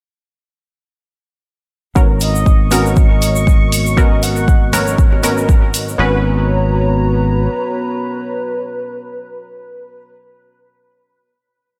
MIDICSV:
0, 0, Header, 1, 7, 480
1, 0, Start_track
1, 0, Key_signature, 5, "minor"
1, 0, Tempo, 504202
1, 1865, Time_signature, 4, 2, 24, 8
1, 11225, End_track
2, 0, Start_track
2, 0, Title_t, "String machine"
2, 0, Program_c, 0, 50
2, 1862, Note_on_c, 0, 85, 80
2, 5714, Note_off_c, 0, 85, 0
2, 11225, End_track
3, 0, Start_track
3, 0, Title_t, "Soft synth lead"
3, 0, Program_c, 1, 80
3, 1865, Note_on_c, 1, 73, 82
3, 1973, Note_off_c, 1, 73, 0
3, 2105, Note_on_c, 1, 75, 99
3, 2787, Note_off_c, 1, 75, 0
3, 2823, Note_on_c, 1, 75, 99
3, 3746, Note_off_c, 1, 75, 0
3, 3782, Note_on_c, 1, 75, 101
3, 4020, Note_on_c, 1, 78, 117
3, 4035, Note_off_c, 1, 75, 0
3, 4497, Note_off_c, 1, 78, 0
3, 4503, Note_on_c, 1, 73, 91
3, 4950, Note_off_c, 1, 73, 0
3, 5705, Note_on_c, 1, 71, 99
3, 9625, Note_off_c, 1, 71, 0
3, 11225, End_track
4, 0, Start_track
4, 0, Title_t, "Analog synth pad"
4, 0, Program_c, 2, 89
4, 1863, Note_on_c, 2, 70, 74
4, 1864, Note_on_c, 2, 59, 79
4, 1864, Note_on_c, 2, 66, 73
4, 1864, Note_on_c, 2, 73, 88
4, 3765, Note_off_c, 2, 73, 0
4, 3784, Note_on_c, 2, 75, 89
4, 5666, Note_off_c, 2, 59, 0
4, 5666, Note_off_c, 2, 66, 0
4, 5666, Note_off_c, 2, 70, 0
4, 5685, Note_off_c, 2, 75, 0
4, 5704, Note_on_c, 2, 66, 75
4, 5704, Note_on_c, 2, 73, 90
4, 5705, Note_on_c, 2, 59, 83
4, 5705, Note_on_c, 2, 82, 75
4, 9624, Note_off_c, 2, 66, 0
4, 9624, Note_off_c, 2, 73, 0
4, 9625, Note_off_c, 2, 59, 0
4, 9625, Note_off_c, 2, 82, 0
4, 11225, End_track
5, 0, Start_track
5, 0, Title_t, "Synth stab"
5, 0, Program_c, 3, 62
5, 1859, Note_on_c, 3, 59, 84
5, 1863, Note_on_c, 3, 61, 79
5, 1866, Note_on_c, 3, 66, 79
5, 1871, Note_on_c, 3, 70, 93
5, 2557, Note_off_c, 3, 59, 0
5, 2559, Note_off_c, 3, 61, 0
5, 2561, Note_off_c, 3, 66, 0
5, 2563, Note_off_c, 3, 70, 0
5, 2579, Note_on_c, 3, 59, 93
5, 2583, Note_on_c, 3, 61, 81
5, 2587, Note_on_c, 3, 66, 83
5, 2591, Note_on_c, 3, 70, 98
5, 3757, Note_off_c, 3, 59, 0
5, 3759, Note_off_c, 3, 61, 0
5, 3761, Note_off_c, 3, 66, 0
5, 3763, Note_off_c, 3, 70, 0
5, 3778, Note_on_c, 3, 59, 95
5, 3782, Note_on_c, 3, 61, 85
5, 3786, Note_on_c, 3, 66, 88
5, 3790, Note_on_c, 3, 70, 103
5, 4477, Note_off_c, 3, 59, 0
5, 4479, Note_off_c, 3, 61, 0
5, 4481, Note_off_c, 3, 66, 0
5, 4482, Note_off_c, 3, 70, 0
5, 4502, Note_on_c, 3, 59, 97
5, 4504, Note_on_c, 3, 61, 86
5, 4506, Note_on_c, 3, 66, 87
5, 4508, Note_on_c, 3, 70, 106
5, 4726, Note_off_c, 3, 59, 0
5, 4727, Note_off_c, 3, 61, 0
5, 4728, Note_off_c, 3, 66, 0
5, 4729, Note_off_c, 3, 70, 0
5, 4979, Note_on_c, 3, 59, 86
5, 4983, Note_on_c, 3, 61, 81
5, 4986, Note_on_c, 3, 66, 80
5, 4990, Note_on_c, 3, 70, 96
5, 5677, Note_off_c, 3, 59, 0
5, 5679, Note_off_c, 3, 61, 0
5, 5681, Note_off_c, 3, 66, 0
5, 5683, Note_off_c, 3, 70, 0
5, 5696, Note_on_c, 3, 59, 84
5, 5702, Note_on_c, 3, 61, 76
5, 5707, Note_on_c, 3, 66, 78
5, 5714, Note_on_c, 3, 71, 94
5, 9616, Note_off_c, 3, 59, 0
5, 9622, Note_off_c, 3, 61, 0
5, 9627, Note_off_c, 3, 66, 0
5, 9634, Note_off_c, 3, 71, 0
5, 11225, End_track
6, 0, Start_track
6, 0, Title_t, "Fingered electric bass"
6, 0, Program_c, 4, 33
6, 1865, Note_on_c, 4, 32, 85
6, 5684, Note_off_c, 4, 32, 0
6, 5705, Note_on_c, 4, 32, 93
6, 7107, Note_off_c, 4, 32, 0
6, 11225, End_track
7, 0, Start_track
7, 0, Title_t, "Drums"
7, 1864, Note_on_c, 9, 82, 35
7, 1865, Note_on_c, 9, 36, 110
7, 1959, Note_off_c, 9, 82, 0
7, 1960, Note_off_c, 9, 36, 0
7, 2099, Note_on_c, 9, 82, 83
7, 2104, Note_on_c, 9, 46, 96
7, 2194, Note_off_c, 9, 82, 0
7, 2199, Note_off_c, 9, 46, 0
7, 2240, Note_on_c, 9, 82, 53
7, 2335, Note_off_c, 9, 82, 0
7, 2345, Note_on_c, 9, 36, 99
7, 2347, Note_on_c, 9, 82, 38
7, 2440, Note_off_c, 9, 36, 0
7, 2442, Note_off_c, 9, 82, 0
7, 2583, Note_on_c, 9, 82, 83
7, 2585, Note_on_c, 9, 46, 87
7, 2678, Note_off_c, 9, 82, 0
7, 2680, Note_off_c, 9, 46, 0
7, 2725, Note_on_c, 9, 82, 47
7, 2820, Note_off_c, 9, 82, 0
7, 2820, Note_on_c, 9, 82, 35
7, 2825, Note_on_c, 9, 36, 115
7, 2915, Note_off_c, 9, 82, 0
7, 2920, Note_off_c, 9, 36, 0
7, 3065, Note_on_c, 9, 46, 99
7, 3066, Note_on_c, 9, 82, 81
7, 3160, Note_off_c, 9, 46, 0
7, 3161, Note_off_c, 9, 82, 0
7, 3196, Note_on_c, 9, 82, 52
7, 3291, Note_off_c, 9, 82, 0
7, 3304, Note_on_c, 9, 36, 99
7, 3312, Note_on_c, 9, 82, 34
7, 3400, Note_off_c, 9, 36, 0
7, 3407, Note_off_c, 9, 82, 0
7, 3544, Note_on_c, 9, 46, 88
7, 3551, Note_on_c, 9, 82, 84
7, 3640, Note_off_c, 9, 46, 0
7, 3646, Note_off_c, 9, 82, 0
7, 3677, Note_on_c, 9, 82, 48
7, 3773, Note_off_c, 9, 82, 0
7, 3785, Note_on_c, 9, 36, 120
7, 3788, Note_on_c, 9, 82, 42
7, 3880, Note_off_c, 9, 36, 0
7, 3883, Note_off_c, 9, 82, 0
7, 4025, Note_on_c, 9, 46, 103
7, 4026, Note_on_c, 9, 82, 93
7, 4120, Note_off_c, 9, 46, 0
7, 4121, Note_off_c, 9, 82, 0
7, 4153, Note_on_c, 9, 82, 55
7, 4248, Note_off_c, 9, 82, 0
7, 4265, Note_on_c, 9, 36, 102
7, 4268, Note_on_c, 9, 82, 39
7, 4360, Note_off_c, 9, 36, 0
7, 4363, Note_off_c, 9, 82, 0
7, 4500, Note_on_c, 9, 63, 88
7, 4504, Note_on_c, 9, 46, 92
7, 4507, Note_on_c, 9, 64, 79
7, 4509, Note_on_c, 9, 82, 93
7, 4595, Note_off_c, 9, 63, 0
7, 4599, Note_off_c, 9, 46, 0
7, 4602, Note_off_c, 9, 64, 0
7, 4604, Note_off_c, 9, 82, 0
7, 4638, Note_on_c, 9, 82, 55
7, 4733, Note_off_c, 9, 82, 0
7, 4745, Note_on_c, 9, 36, 120
7, 4747, Note_on_c, 9, 82, 40
7, 4840, Note_off_c, 9, 36, 0
7, 4842, Note_off_c, 9, 82, 0
7, 4879, Note_on_c, 9, 60, 60
7, 4974, Note_off_c, 9, 60, 0
7, 4983, Note_on_c, 9, 63, 63
7, 4984, Note_on_c, 9, 46, 104
7, 4984, Note_on_c, 9, 82, 83
7, 5078, Note_off_c, 9, 63, 0
7, 5079, Note_off_c, 9, 46, 0
7, 5079, Note_off_c, 9, 82, 0
7, 5117, Note_on_c, 9, 82, 48
7, 5212, Note_off_c, 9, 82, 0
7, 5225, Note_on_c, 9, 36, 105
7, 5226, Note_on_c, 9, 82, 36
7, 5320, Note_off_c, 9, 36, 0
7, 5322, Note_off_c, 9, 82, 0
7, 5464, Note_on_c, 9, 46, 93
7, 5467, Note_on_c, 9, 82, 90
7, 5559, Note_off_c, 9, 46, 0
7, 5562, Note_off_c, 9, 82, 0
7, 5603, Note_on_c, 9, 82, 50
7, 5698, Note_off_c, 9, 82, 0
7, 11225, End_track
0, 0, End_of_file